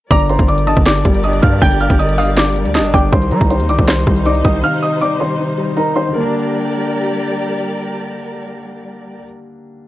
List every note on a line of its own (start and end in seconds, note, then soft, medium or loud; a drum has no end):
0.11 0.38 G1 loud
0.11 0.47 D3 medium
0.11 6.11 G3 medium
0.11 3.10 G4 medium
0.11 3.10 A#4 medium
0.11 3.10 D5 medium
0.11 0.28 D5 medium
0.11 0.64 A#5 loud
0.11 0.27 D6 loud
0.11 kick loud
0.11 closed hi-hat medium
0.20 closed hi-hat medium
0.29 0.47 C5 medium
0.29 0.46 C6 medium
0.29 closed hi-hat medium
0.39 0.75 G1 loud
0.39 kick medium
0.39 closed hi-hat medium
0.48 0.66 D3 medium
0.48 0.65 D5 medium
0.48 0.65 D6 medium
0.48 closed hi-hat medium
0.58 closed hi-hat medium
0.67 0.85 D3 medium
0.67 0.84 D#5 medium
0.67 0.85 A5 medium
0.67 0.84 D#6 medium
0.67 closed hi-hat medium
0.77 1.04 G1 loud
0.77 kick medium
0.86 1.41 D3 medium
0.86 1.22 D5 medium
0.86 1.22 D6 loud
0.86 snare loud
0.86 clap medium
0.86 closed hi-hat medium
0.95 closed hi-hat medium
1.05 1.41 G1 loud
1.05 1.99 G3 medium
1.05 kick loud
1.05 closed hi-hat medium
1.14 closed hi-hat medium
1.24 2.18 D4 medium
1.24 1.41 D#5 medium
1.24 1.40 D#6 medium
1.24 closed hi-hat medium
1.33 closed hi-hat soft
1.42 1.61 G2 loud
1.42 1.60 D3 medium
1.42 1.60 F5 medium
1.42 1.59 F6 medium
1.42 kick loud
1.42 closed hi-hat medium
1.62 1.89 G1 loud
1.62 1.98 D3 medium
1.62 2.15 G5 loud
1.62 1.79 G5 medium
1.62 1.78 G6 loud
1.62 kick loud
1.62 closed hi-hat medium
1.71 closed hi-hat medium
1.80 1.98 F5 medium
1.80 1.97 F6 medium
1.80 closed hi-hat medium
1.90 2.67 G1 loud
1.90 kick medium
1.90 closed hi-hat medium
1.99 2.17 D3 medium
1.99 2.16 D#5 medium
1.99 2.16 D#6 medium
1.99 closed hi-hat medium
2.09 closed hi-hat medium
2.18 2.36 D3 medium
2.18 2.35 D#5 medium
2.18 2.36 F5 medium
2.18 2.35 D#6 medium
2.18 open hi-hat medium
2.37 2.92 D3 medium
2.37 2.73 D5 medium
2.37 2.73 D6 medium
2.37 snare loud
2.37 clap medium
2.37 closed hi-hat medium
2.47 closed hi-hat medium
2.56 3.13 G3 medium
2.56 closed hi-hat medium
2.65 2.81 D2 loud
2.65 closed hi-hat medium
2.75 3.13 D4 loud
2.75 2.92 D#5 medium
2.75 2.91 D#6 medium
2.75 snare medium
2.75 clap medium
2.75 closed hi-hat medium
2.80 2.93 G1 loud
2.84 closed hi-hat medium
2.94 3.12 G1 loud
2.94 3.13 D3 medium
2.94 3.11 D5 medium
2.94 3.12 G5 medium
2.94 3.10 D6 medium
2.94 kick loud
2.94 closed hi-hat medium
3.12 3.33 C2 loud
3.12 6.12 C3 medium
3.12 3.49 D#3 medium
3.12 6.12 D#4 medium
3.12 6.12 C5 medium
3.12 3.29 C5 medium
3.12 3.29 C6 loud
3.12 kick loud
3.12 closed hi-hat medium
3.22 closed hi-hat medium
3.31 3.40 G3 loud
3.31 3.49 A#4 medium
3.31 3.48 A#5 medium
3.31 closed hi-hat medium
3.41 3.61 C2 loud
3.41 kick medium
3.41 closed hi-hat medium
3.50 3.68 D#3 medium
3.50 3.67 C5 medium
3.50 3.67 C6 medium
3.50 closed hi-hat medium
3.60 3.71 D#2 loud
3.60 closed hi-hat medium
3.69 3.78 C2 loud
3.69 3.87 D#3 medium
3.69 3.86 D5 medium
3.69 3.86 D6 medium
3.69 closed hi-hat medium
3.79 4.06 C2 loud
3.79 kick medium
3.88 4.43 D#3 medium
3.88 4.24 C5 medium
3.88 4.23 C6 medium
3.88 snare loud
3.88 clap medium
3.88 closed hi-hat medium
3.97 closed hi-hat medium
4.07 4.43 C2 loud
4.07 5.01 G3 medium
4.07 kick loud
4.07 closed hi-hat medium
4.16 closed hi-hat medium
4.26 5.20 D#4 loud
4.26 4.43 D5 medium
4.26 4.42 D6 medium
4.26 closed hi-hat medium
4.35 closed hi-hat medium
4.45 4.63 C2 loud
4.45 4.62 D#3 medium
4.45 4.62 D#5 medium
4.45 4.61 D#6 medium
4.45 kick loud
4.45 closed hi-hat medium
4.64 5.00 D#3 medium
4.64 4.81 F5 medium
4.64 4.80 F6 loud
4.83 4.99 D#5 medium
4.83 4.99 D#6 medium
5.01 5.19 D#3 medium
5.01 5.18 D5 medium
5.01 5.18 D6 medium
5.20 5.38 D#3 medium
5.20 5.74 C5 medium
5.20 5.73 C6 medium
5.39 5.94 D#3 medium
5.58 6.11 G3 medium
5.77 6.15 D#4 medium
5.77 5.94 A#4 medium
5.77 5.93 A#5 medium
5.96 6.14 D#3 medium
5.96 6.13 C5 medium
5.96 6.12 C6 medium
6.08 9.13 D3 medium
6.12 9.17 G3 medium
6.12 9.19 G3 medium
6.12 9.21 A#3 medium
6.12 9.19 G4 medium
6.12 7.24 A#4 medium
6.12 9.19 A#4 medium
6.12 9.19 D5 medium
6.20 9.25 D4 medium